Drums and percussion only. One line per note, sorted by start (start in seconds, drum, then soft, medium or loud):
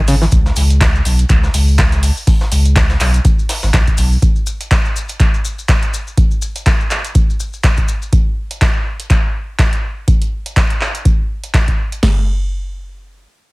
0.08 closed hi-hat medium
0.08 open hi-hat loud
0.08 maracas medium
0.22 snare soft
0.22 maracas soft
0.32 kick loud
0.32 closed hi-hat medium
0.32 maracas medium
0.46 snare soft
0.46 maracas soft
0.56 closed hi-hat medium
0.56 open hi-hat loud
0.56 maracas loud
0.70 closed hi-hat medium
0.70 maracas soft
0.81 kick loud
0.81 snare loud
0.81 clap loud
0.81 closed hi-hat medium
0.81 maracas soft
0.95 maracas soft
1.05 closed hi-hat medium
1.05 open hi-hat loud
1.05 maracas medium
1.19 closed hi-hat soft
1.19 maracas soft
1.29 kick loud
1.29 clap medium
1.29 closed hi-hat medium
1.29 maracas soft
1.43 snare soft
1.43 maracas soft
1.54 closed hi-hat medium
1.54 open hi-hat loud
1.54 maracas loud
1.68 maracas soft
1.78 kick loud
1.78 snare loud
1.78 clap loud
1.78 closed hi-hat medium
1.78 maracas medium
1.92 snare soft
1.92 closed hi-hat soft
1.92 maracas soft
2.03 closed hi-hat medium
2.03 open hi-hat loud
2.03 maracas loud
2.17 maracas soft
2.27 kick loud
2.27 closed hi-hat medium
2.27 open hi-hat medium
2.27 maracas soft
2.40 snare soft
2.40 maracas soft
2.52 closed hi-hat medium
2.52 open hi-hat loud
2.52 maracas loud
2.65 closed hi-hat soft
2.65 maracas soft
2.76 kick loud
2.76 snare loud
2.76 clap loud
2.76 closed hi-hat medium
2.76 maracas medium
2.90 snare medium
2.90 maracas soft
3.00 clap medium
3.00 closed hi-hat medium
3.00 open hi-hat loud
3.00 maracas loud
3.14 closed hi-hat soft
3.14 maracas soft
3.25 kick loud
3.25 closed hi-hat medium
3.25 maracas medium
3.39 maracas soft
3.49 snare soft
3.49 closed hi-hat medium
3.49 open hi-hat loud
3.49 maracas loud
3.63 snare soft
3.63 maracas soft
3.74 kick loud
3.74 snare loud
3.74 clap loud
3.74 closed hi-hat medium
3.74 maracas medium
3.87 kick medium
3.87 closed hi-hat soft
3.87 maracas soft
3.97 closed hi-hat medium
3.97 open hi-hat loud
3.97 maracas medium
4.12 maracas soft
4.22 kick loud
4.22 closed hi-hat medium
4.22 maracas soft
4.36 maracas soft
4.47 maracas loud
4.61 closed hi-hat soft
4.61 maracas soft
4.71 kick loud
4.71 clap loud
4.71 closed hi-hat medium
4.71 maracas medium
4.85 maracas soft
4.96 maracas medium
5.09 closed hi-hat soft
5.09 maracas soft
5.20 kick loud
5.20 clap medium
5.20 closed hi-hat medium
5.20 maracas medium
5.34 maracas soft
5.45 maracas medium
5.59 maracas soft
5.68 kick loud
5.68 clap loud
5.68 closed hi-hat medium
5.68 maracas soft
5.82 closed hi-hat soft
5.82 maracas soft
5.94 maracas medium
6.07 maracas soft
6.17 kick loud
6.17 closed hi-hat medium
6.17 maracas soft
6.31 maracas soft
6.42 maracas medium
6.56 closed hi-hat soft
6.56 maracas soft
6.66 kick loud
6.66 clap loud
6.66 closed hi-hat medium
6.66 maracas medium
6.80 maracas soft
6.91 clap medium
6.91 maracas medium
7.05 closed hi-hat soft
7.05 maracas soft
7.15 kick loud
7.15 closed hi-hat medium
7.15 maracas soft
7.30 maracas soft
7.40 maracas medium
7.53 maracas soft
7.63 kick loud
7.63 clap loud
7.63 closed hi-hat medium
7.63 maracas soft
7.77 kick medium
7.77 closed hi-hat soft
7.77 maracas soft
7.88 maracas medium
8.02 maracas soft
8.13 kick loud
8.13 closed hi-hat medium
8.51 closed hi-hat medium
8.61 kick loud
8.61 clap loud
8.61 closed hi-hat medium
9.00 closed hi-hat medium
9.10 kick loud
9.10 clap medium
9.10 closed hi-hat medium
9.59 kick loud
9.59 clap loud
9.59 closed hi-hat medium
9.73 closed hi-hat soft
10.08 kick loud
10.08 closed hi-hat medium
10.22 closed hi-hat soft
10.46 closed hi-hat medium
10.57 kick loud
10.57 clap loud
10.57 closed hi-hat medium
10.70 closed hi-hat soft
10.81 clap medium
10.95 closed hi-hat medium
11.05 kick loud
11.05 closed hi-hat medium
11.44 closed hi-hat soft
11.54 kick loud
11.54 clap loud
11.54 closed hi-hat medium
11.68 kick medium
11.68 closed hi-hat soft
11.92 closed hi-hat soft
12.03 kick loud
12.03 snare loud
12.03 crash medium